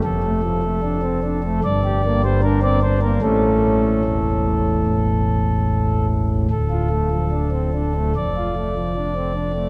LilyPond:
<<
  \new Staff \with { instrumentName = "Pipe organ" } { \time 4/4 \key d \minor \tempo 4 = 74 a'2 d''8. c''16 bes'16 d''16 c''16 bes'16 | a'2.~ a'8 r8 | a'2 d''2 | }
  \new Staff \with { instrumentName = "Pipe organ" } { \time 4/4 \key d \minor << { f,16 a16 f16 a16 d'16 c'16 d'16 a16 g,16 g'16 bes16 g16 d'16 c'16 d'16 bes16 | <a, a cis'>4 e,4 a,,2 | d,16 f'16 a16 f16 d'16 c'16 d'16 a16 f,16 f'16 a16 f16 d'16 c'16 d'16 a16 | } \\ { f,,2 g,,2 | a,,4 e,,2. | d,,2 f,,2 | } >> }
>>